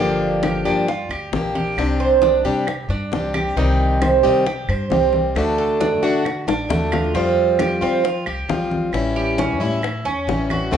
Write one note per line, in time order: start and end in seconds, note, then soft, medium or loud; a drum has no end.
0.00 0.67 G1 medium
0.00 0.64 D3 medium
0.00 0.64 F3 medium
0.00 0.64 A#3 medium
0.00 0.42 D4 medium
0.00 0.66 D4 medium
0.00 0.65 G4 medium
0.20 high conga soft
0.43 0.65 G4 medium
0.43 high bongo medium
0.43 high conga medium
0.43 claves medium
0.65 1.08 G2 medium
0.65 0.88 F3 medium
0.65 0.87 A#3 medium
0.65 0.87 D4 medium
0.65 0.87 G4 medium
0.65 high conga soft
0.88 1.10 F4 medium
0.88 muted steel-string acoustic guitar stroke medium
0.88 high bongo medium
0.88 high conga soft
1.09 1.31 D2 medium
1.09 1.54 G4 medium
1.09 high conga soft
1.09 claves medium
1.32 1.75 A#1 medium
1.32 1.77 F3 medium
1.32 1.78 A#3 soft
1.32 1.78 D4 medium
1.32 high bongo medium
1.32 low bongo medium
1.32 high conga medium
1.36 1.78 G4 medium
1.55 1.99 G4 medium
1.55 high conga medium
1.77 2.46 C2 medium
1.77 2.49 C3 medium
1.77 2.47 G3 medium
1.77 2.46 C4 medium
1.77 2.45 D4 medium
1.77 2.45 G4 medium
1.77 high bongo medium
1.77 high conga soft
1.77 claves medium
1.99 2.22 C5 medium
1.99 high conga soft
2.22 2.44 D4 medium
2.22 high bongo medium
2.22 high conga medium
2.44 2.87 C3 medium
2.44 2.67 G3 medium
2.44 2.67 C4 soft
2.44 2.67 D4 medium
2.44 2.88 G4 medium
2.44 2.66 G4 medium
2.44 high bongo soft
2.44 high conga soft
2.67 muted steel-string acoustic guitar stroke medium
2.67 high bongo medium
2.67 high conga soft
2.67 claves medium
2.89 3.10 G2 medium
2.89 3.33 D4 medium
2.89 high bongo soft
2.89 high conga soft
3.11 3.54 C2 medium
3.11 3.56 G3 soft
3.11 3.57 C4 soft
3.11 3.57 D4 medium
3.11 3.57 G4 medium
3.11 high bongo medium
3.11 low bongo medium
3.11 high conga medium
3.34 3.56 G4 medium
3.34 high bongo soft
3.34 high conga medium
3.34 claves medium
3.56 4.25 C2 medium
3.56 4.23 C3 medium
3.56 4.23 D#3 medium
3.56 4.23 G3 medium
3.56 4.23 C4 medium
3.56 4.00 D#4 medium
3.56 4.22 G4 medium
3.56 high bongo medium
3.56 high conga soft
3.79 high conga soft
4.02 4.23 C5 medium
4.02 high bongo medium
4.02 high conga medium
4.02 claves medium
4.23 4.66 C3 medium
4.23 4.45 D#3 medium
4.23 4.45 G3 medium
4.23 4.45 C4 medium
4.23 4.46 D#4 medium
4.23 4.45 G4 medium
4.23 high conga soft
4.46 4.68 G4 medium
4.46 muted steel-string acoustic guitar stroke medium
4.46 high bongo medium
4.46 high conga soft
4.68 4.90 G2 medium
4.68 5.12 C5 medium
4.68 high conga soft
4.68 claves medium
4.90 5.33 C2 medium
4.90 5.35 D#3 soft
4.90 5.35 G3 medium
4.90 5.36 C4 medium
4.90 5.36 G4 medium
4.90 high bongo medium
4.90 low bongo medium
4.90 high conga medium
5.13 high conga medium
5.35 6.03 D2 medium
5.35 6.02 D3 medium
5.35 6.04 A3 medium
5.35 6.03 D4 medium
5.35 6.01 F#4 medium
5.35 high bongo medium
5.35 high conga soft
5.35 claves medium
5.58 5.80 A4 medium
5.58 high conga soft
5.80 6.02 D4 medium
5.80 high bongo medium
5.80 high conga medium
6.03 6.45 D3 medium
6.03 6.25 A3 medium
6.03 6.25 D4 medium
6.03 6.24 F#4 medium
6.03 6.46 F#4 medium
6.03 high bongo soft
6.03 high conga soft
6.25 muted steel-string acoustic guitar stroke medium
6.25 high bongo medium
6.25 high conga soft
6.25 claves medium
6.47 6.69 A1 medium
6.47 6.91 D4 medium
6.47 high bongo medium
6.47 high conga soft
6.69 7.12 D#2 medium
6.69 7.13 D3 medium
6.69 7.14 A3 medium
6.69 7.14 D4 medium
6.69 7.14 F#4 medium
6.69 low bongo loud
6.69 high conga medium
6.92 7.14 F4 medium
6.92 low bongo medium
6.92 high conga medium
6.92 claves medium
7.14 7.83 F2 medium
7.14 7.81 F3 medium
7.14 7.83 G3 medium
7.14 7.58 C4 medium
7.14 7.81 C4 medium
7.14 7.80 F4 medium
7.14 high bongo medium
7.14 high conga soft
7.37 high conga soft
7.59 7.82 G4 medium
7.59 high bongo medium
7.59 high conga medium
7.59 claves medium
7.81 8.24 F3 medium
7.81 8.03 G3 medium
7.81 8.04 C4 medium
7.81 8.03 C4 medium
7.81 8.03 F4 medium
7.81 high conga soft
8.04 8.26 F4 medium
8.04 muted steel-string acoustic guitar stroke medium
8.04 high bongo medium
8.04 high conga soft
8.26 8.48 C2 medium
8.26 8.70 G4 medium
8.26 high conga soft
8.26 claves medium
8.49 8.91 A#1 medium
8.49 8.92 F3 soft
8.49 8.93 G3 soft
8.49 8.93 C4 medium
8.49 8.94 F4 medium
8.49 high bongo medium
8.49 low bongo medium
8.49 high conga medium
8.71 high conga medium
8.92 9.60 A1 medium
8.92 9.59 E3 medium
8.92 9.60 G3 medium
8.92 9.60 C#4 medium
8.92 9.59 E4 medium
8.92 high bongo medium
8.92 high conga soft
8.92 claves medium
9.16 9.38 G4 medium
9.16 high conga soft
9.38 9.60 C#4 medium
9.38 high bongo medium
9.38 high conga medium
9.60 10.03 A2 medium
9.60 9.81 G3 soft
9.60 9.82 C#4 medium
9.60 9.82 E4 medium
9.60 10.04 E4 medium
9.60 high bongo soft
9.60 high conga soft
9.82 muted steel-string acoustic guitar stroke medium
9.82 high bongo medium
9.82 high conga soft
9.82 claves medium
10.05 10.27 E2 medium
10.05 10.49 C#4 medium
10.05 high bongo soft
10.05 high conga soft
10.27 10.70 A1 medium
10.27 10.71 E3 soft
10.27 10.72 G3 medium
10.27 10.72 C#4 medium
10.27 10.72 E4 soft
10.27 high bongo medium
10.27 low bongo medium
10.27 high conga medium
10.50 10.72 F#4 medium
10.50 high bongo soft
10.50 high conga medium
10.50 claves medium
10.71 10.77 D2 medium
10.71 10.77 D3 medium
10.71 10.77 A3 medium
10.71 10.77 C4 medium
10.71 10.77 D4 medium
10.71 10.77 F#4 medium
10.71 high bongo medium
10.71 high conga soft